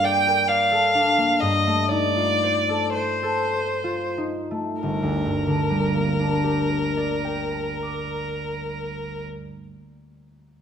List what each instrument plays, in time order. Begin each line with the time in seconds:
Already playing: harp G2 A#3 D4 A4 A#4
0.04 harp D5, violin G5
0.27 harp A#4
0.48 harp D5, violin F5
0.71 harp A4
0.95 harp D4
1.18 harp A#3
1.40 harp G2, violin D#5
1.67 harp A3
1.89 harp D#4, violin D5
2.17 harp F4
2.43 harp C5
2.69 harp A4
2.95 violin C5, harp C5
3.23 harp A4
3.53 harp C5
3.84 harp F4
4.18 harp D#4
4.51 harp A3
4.82 harp G1, violin A#4
5.03 harp D2
5.25 harp G2
5.47 harp D3
5.70 harp G3
5.95 harp A#3
6.19 harp D4
6.44 harp G4
6.69 harp A#4
6.97 harp D5
7.25 harp G5
7.52 harp A#5
7.82 harp D6